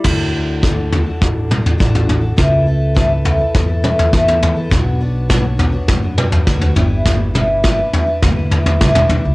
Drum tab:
CC |x---------------|----------------|----------------|----------------|
SD |o---o---o---o---|o---o---o---o---|o---o---o---o---|o---o---o---o---|
T2 |----------o-----|----------o-----|----------o-----|--o----------o--|
FT |o-----o-o--o-oo-|o-----o-o--o-oo-|o-----o-o--o-oo-|o-----o-o-oo-oo-|
BD |o---o---o---o---|o---o---o---o---|o---o---o---o---|o---o---o---o---|